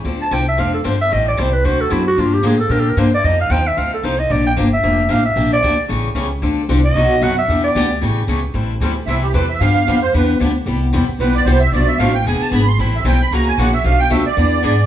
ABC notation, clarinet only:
X:1
M:4/4
L:1/8
Q:"Swing" 1/4=226
K:Dm
V:1 name="Clarinet"
z a g e f A c e | _e d c =B c A =E ^F | F G ^G A (3B A B c d | _e f g =e f A c _e |
d g z e3 f e- | e d3 z4 | z3 _e3 ^f =e- | e d3 z4 |
[K:Am] z8 | z8 | z8 | z8 |
z8 | z8 |]